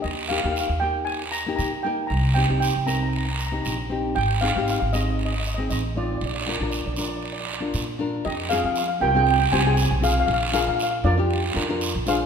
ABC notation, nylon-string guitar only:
X:1
M:4/4
L:1/16
Q:"Swing 16ths" 1/4=117
K:Fdor
V:1 name="Nylon-string guitar"
z2 [B,EG] [B,EG]2 z [B,EG]3 z2 [B,EG]2 z [B,EB]2 | z2 [CEG] [CEG]2 z [CEB]3 z2 [CEG]2 z [CEG]2 | z2 [CEA] [CEG]2 z [CEA]3 z2 [CEA]2 z [CEF]2 | z2 [DFB] [DFB]2 z [DFB]3 z2 [DFB]2 z [DFB]2 |
z2 [CFA]2 z2 [CFG] [CFA]2 z [CFG] [CFA]2 z [CFA]2 | z2 [DFB]2 z2 [DFB] [DFG]2 z [DFB] [DFB]2 z [DFc]2 |]